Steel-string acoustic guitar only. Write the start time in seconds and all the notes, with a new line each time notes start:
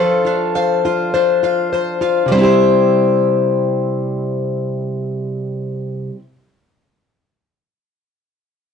Already playing: F3 F4 A4 C5
0.25 F4
0.56 C5
0.85 F4
1.14 C5
1.43 F4
1.73 C5
2.01 F4
2.26 C3
2.31 G3 C4
2.38 E4 G4
2.44 C5